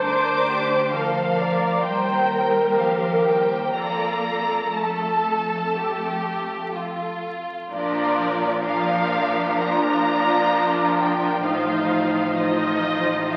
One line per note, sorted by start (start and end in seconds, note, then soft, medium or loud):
0.00 1.85 D2 medium
0.00 0.90 D4 medium
0.00 0.48 A#4 medium
0.00 0.93 C5 medium
0.00 1.84 C5 medium
0.00 0.89 D6 medium
0.50 0.94 G4 medium
0.94 1.85 F3 medium
0.94 1.40 A4 medium
0.94 1.40 A#4 medium
0.94 1.85 F5 medium
1.39 1.84 A#4 medium
1.39 1.84 D5 medium
1.84 3.70 D#2 medium
1.84 2.77 G3 medium
1.84 2.75 A#4 medium
1.84 2.29 C5 medium
1.84 3.70 C5 medium
1.84 2.76 G5 medium
2.30 3.74 A#4 medium
2.76 3.24 F3 medium
2.76 3.73 G4 medium
2.76 3.25 F5 medium
3.24 3.73 G3 medium
3.24 3.73 G5 medium
3.73 7.50 F2 medium
3.73 4.72 A#3 medium
3.73 4.63 F4 soft
3.73 7.22 A4 medium
3.73 4.63 D5 soft
3.73 4.72 A#5 medium
4.74 6.68 A3 soft
4.74 5.71 A4 medium
4.74 6.72 A5 medium
5.74 6.72 G4 medium
6.73 7.71 F4 medium
7.71 11.40 A#1 medium
7.71 11.39 A#2 medium
7.71 8.59 F3 medium
7.71 8.60 D4 medium
7.71 8.60 F4 medium
7.71 8.60 A#4 medium
7.71 8.59 D5 medium
8.63 9.58 F3 medium
8.63 9.58 D4 medium
8.63 9.58 F4 medium
8.63 9.58 A#4 medium
8.63 9.60 F5 loud
9.59 11.39 F3 medium
9.59 11.40 D4 medium
9.59 11.40 F4 medium
9.59 11.40 A#4 medium
9.59 10.97 A#5 medium
10.97 11.43 G5 medium
11.43 13.37 A1 medium
11.43 13.37 A2 medium
11.43 12.35 F3 medium
11.43 12.35 D#4 medium
11.43 12.36 F4 medium
11.43 12.36 C5 medium
11.43 12.37 F5 medium
12.37 13.27 F3 medium
12.37 13.27 D#4 medium
12.37 13.28 F4 medium
12.37 13.28 C5 medium
12.37 13.29 D#5 loud
13.28 13.37 F3 medium
13.28 13.37 D#4 medium
13.28 13.37 F4 medium
13.28 13.37 C5 medium
13.28 13.37 F5 loud